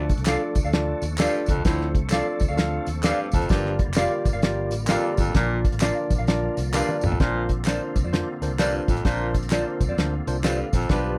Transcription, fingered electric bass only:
0.18 C2
0.55 D2
0.64 D2
1.02 D#2
1.48 D2
1.57 C#2
1.65 D2
2.03 C2
2.41 D2
2.49 D2
2.87 D#2
3.33 D2
3.42 F#1
3.50 G1
3.88 F1
4.26 G1
4.34 G1
4.72 A1
5.18 G1
5.27 A1
5.35 A#1
5.73 A1
6.10 A#1
6.19 A#1
6.58 C2
7.03 A#1
7.12 A1
7.20 A#1
7.95 C2
8.04 F2
8.41 D2
8.50 C2
8.88 A1
9.05 A#1
9.81 C2
9.88 F2
9.97 D2
10.27 C2
10.73 A#1
10.90 B1

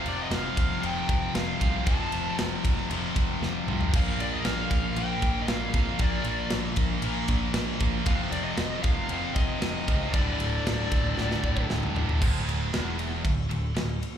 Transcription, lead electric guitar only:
0.09 D5
0.23 D#5
0.35 F5
0.86 G5
1.36 F5
1.88 A5
3.96 F5
4.21 D5
4.33 D#5
4.45 F5
4.97 G5
5.42 D#5
5.48 F5
6.02 D5
8.06 F5
8.32 D5
8.44 D#5
8.83 F5
9.35 D#5
10.13 D5

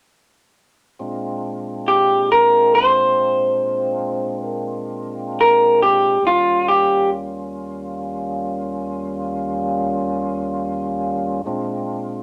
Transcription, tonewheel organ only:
0.99 A#2 G#3 C4 D4 F4
6.22 D#2 G3 A#3 C#4 F4
11.45 A#2 G#3 C4 D4 F4

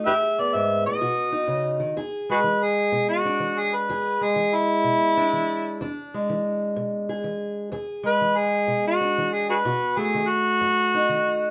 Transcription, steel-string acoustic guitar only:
0.07 E2 G#4
0.39 B3
0.54 G#2
0.86 A2
1.01 B2 F#4
1.32 D#4
1.48 C#3
1.80 D#3
1.97 E2 G#4
2.30 G#3
2.44 E3
2.92 B2
3.25 D4
3.40 E3
3.89 E2 G#4
4.21 G#3
4.36 E3
4.84 B2
5.17 D4
5.33 E3
5.81 E2 D4
6.14 G#3
6.30 E3
6.76 B2
7.09 G#4
7.24 E3
7.72 E2 G#4
8.03 G#3
8.21 E3
8.67 B2
9.01 D4
9.18 E3
9.65 B2 F#4
9.97 A3
10.14 D#3
10.61 F#2
10.94 D#4
11.09 D#3

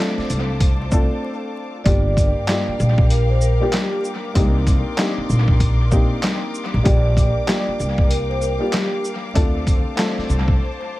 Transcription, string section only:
Already playing: C5 F5 A5 D6
1.85 A#4 F5 G5 D6
4.36 D5 C6
6.85 F5 G5
9.34 C5 A5

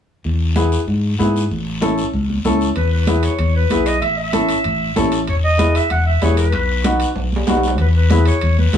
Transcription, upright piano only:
0.56 B3 E4 G#4
1.19 B3 E4 G#4
1.81 C#4 E4 A4
2.45 C#4 E4 A4
3.07 B3 E4 G#4
3.71 B3 E4 G#4
4.32 C#4 E4 A4
4.96 C#4 E4 A4
5.58 B3 E4 G#4
6.21 B3 E4 G#4
6.85 B3 D#4 F#4
7.48 B3 D#4 F#4
8.11 B3 E4 G#4
8.74 B3 E4 G#4

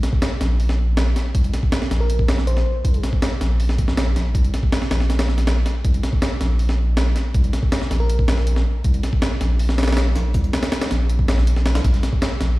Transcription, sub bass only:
0.41 A#1
1.35 C2
1.91 A#1
2.85 C2
3.41 A#1
4.16 A#1
4.35 C2
4.91 A#1
5.85 C2
6.41 A#1
7.34 C2
7.91 A#1
8.85 C2
9.41 A#1
10.16 A#1
10.35 C2
10.91 A#1
11.75 C2
11.85 C2
12.41 A#1

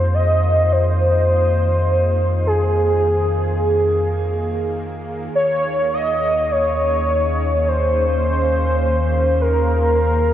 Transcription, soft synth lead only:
Already playing: C5
0.14 D#5
0.72 C5
2.47 G#4
5.35 C#5
5.94 D#5
6.52 C#5
7.68 C5
9.41 A#4

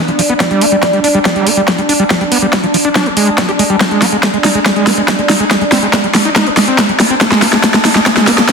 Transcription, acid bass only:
0.08 F3
0.19 F3
0.29 B3
0.40 G3
0.51 G3
0.61 B3
0.72 G3
0.83 G3
0.93 G3
1.04 D4
1.15 G3
1.25 G3
1.36 G3
1.47 B3
1.57 G3
1.68 G3
1.78 G3
1.89 D4
2.00 G3
2.10 G3
2.21 G3
2.32 B3
2.42 G3
2.53 G3
2.64 F3
2.74 F3
2.85 D4
2.95 D4
3.06 F3
3.17 G#3
3.27 G3
3.38 G3
3.49 G4
3.59 G#3
3.70 G3
3.81 G#3
3.91 G#3
4.02 C4
4.12 G#3
4.23 G#3
4.34 G#3
4.44 D#4
4.55 G#3
4.66 G#3
4.76 G#3
4.87 C4
4.98 G#3
5.08 G#3
5.19 G#3
5.30 D#4
5.40 G#3
5.51 G#3
5.61 G#3
5.72 C4
5.83 G#3
5.93 G#3
6.04 G3
6.15 G3
6.25 D#4
6.36 D#4
6.47 G3
6.57 G#3
6.68 C4
6.78 G#3
6.89 G3
7.00 G3
7.10 C4
7.21 G#3
7.32 G#3
7.42 C4
7.53 G#3
7.64 G#3
7.74 G#3
7.85 D#4
7.95 G#3
8.06 G#3
8.17 G#3
8.27 C4
8.38 G#3
8.49 G#3

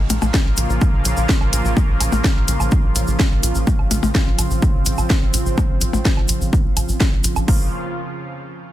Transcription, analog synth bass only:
0.10 A#1
0.22 A#1
0.46 A#1
0.58 A#1
0.70 A#1
0.93 A#1
1.05 A#1
1.17 A#1
1.41 A#1
1.53 A#1
1.65 A#1
1.89 A#1
2.01 A#1
2.12 A#1
2.36 A#1
2.48 A#1
2.60 A#1
2.84 A#1
2.96 A#1
3.08 A#1
3.31 A#1
3.43 A#1
3.55 A#1
3.79 A#1
3.91 A#1
4.03 A#1
4.27 A#1
4.39 A#1
4.51 A#1
4.74 A#1
4.86 A#1
4.98 A#1
5.22 A#1
5.34 A#1
5.46 A#1
5.70 A#1
5.82 A#1
5.93 A#1
6.17 A#1
6.29 A#1
6.41 A#1
6.65 A#1
6.77 A#1
6.89 A#1
7.12 A#1
7.24 A#1
7.36 A#1
7.48 A#1

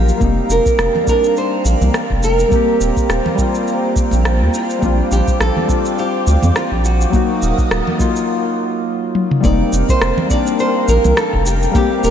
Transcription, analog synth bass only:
Already playing: A#1
0.21 F1
0.49 F1
0.79 F1
1.65 A#1
1.82 C2
2.10 F1
2.81 D#1
3.09 D#1
4.13 A#1
4.42 D#2
4.83 A#1
5.12 A#1
5.41 A#1
6.27 D2
6.44 F2
6.72 A#1
7.42 D#1
7.71 D#1
9.44 F1
9.73 F1
10.02 F1
10.88 A#1
11.05 C2
11.33 F1
12.04 D#1

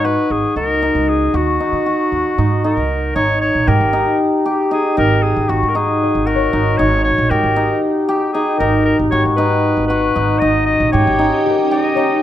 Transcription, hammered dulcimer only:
Already playing: D#4
0.05 F#4
0.57 D#4
0.83 D#4
1.34 F#4
1.60 D#4
1.86 F#4
2.38 D#4
2.64 D#4
3.16 D#4
3.67 G4
3.93 D#4
4.46 G4
4.71 D#4
4.97 D#4
5.49 F#4
5.75 D#4
6.27 F#4
6.53 D#4
6.79 D#4
7.31 G4
7.56 D#4
8.09 G4
8.35 D#4
8.60 D#4
9.12 F#4
9.38 D#4
9.90 F#4
10.15 D#4
10.42 D#4
10.93 G4
11.19 D#4
11.71 G4
11.97 D#4

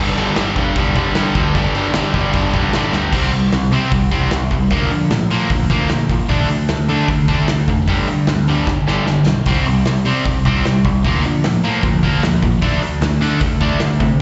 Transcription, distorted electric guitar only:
Already playing: G2 D3 G3 D4
0.16 G2 D3 G3
0.36 G2 D3 G3
0.56 G2 D3 G3
0.76 G2 D3 G3
0.95 G2 D3 G3
1.15 G2 D3 G3
1.35 G2 D3 G3
1.55 G2 D3 G3
1.75 G2 D3 G3
1.95 G2 D3 G3
2.14 G2 D3 G3
2.34 G2 D3 G3
2.54 G2 D3 G3
2.74 G2 D3 G3
2.93 G2 D3 G3
3.12 C3 G3 C4
3.33 C3 G3
3.53 C3 G3
3.72 C3 G3 C4
3.92 C3 G3
4.11 C3 G3 C4
4.32 C3 G3
4.51 C3 G3
4.71 A#2 F3 A#3
4.92 A#2 F3
5.11 A#2 F3
5.31 A#2 F3 A#3
5.51 A#2 F3
5.70 A#2 F3 A#3
5.90 A#2 F3
6.10 A#2 F3
6.28 D3 A3 D4
6.49 D3 A3
6.69 D3 A3
6.89 D3 A3 D4
7.09 D3 A3
7.28 D3 A3 D4
7.49 D3 A3
7.69 D3 A3
7.88 G2 D3 G3
8.08 G2 D3
8.29 G2 D3
8.48 G2 D3 G3
8.67 G2 D3
8.87 G2 D3 G3
9.06 G2 D3
9.27 G2 D3
9.47 C3 G3 C4
9.67 C3 G3
9.86 C3 G3
10.05 C3 G3 C4
10.25 C3 G3
10.45 C3 G3 C4
10.65 C3 G3
10.85 C3 G3
11.05 A#2 F3 A#3
11.25 A#2 F3
11.44 A#2 F3
11.64 A#2 F3 A#3
11.83 A#2 F3
12.03 A#2 F3 A#3
12.23 A#2 F3
12.43 A#2 F3
12.62 D3 A3 D4
12.82 D3 A3
13.02 D3 A3
13.21 D3 A3 D4
13.41 D3 A3
13.61 D3 A3 D4
13.80 D3 A3
14.00 D3 A3

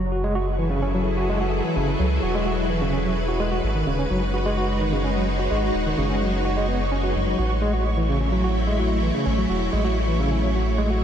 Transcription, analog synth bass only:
Already playing: F#1
1.76 F#1
1.99 C#2
2.23 E1
3.63 G#1
3.87 D#1
4.10 F#1
5.51 G#1
5.74 D#1
5.98 F#1
7.15 F#1
7.39 A1
9.26 A1
9.50 E1
9.73 A1

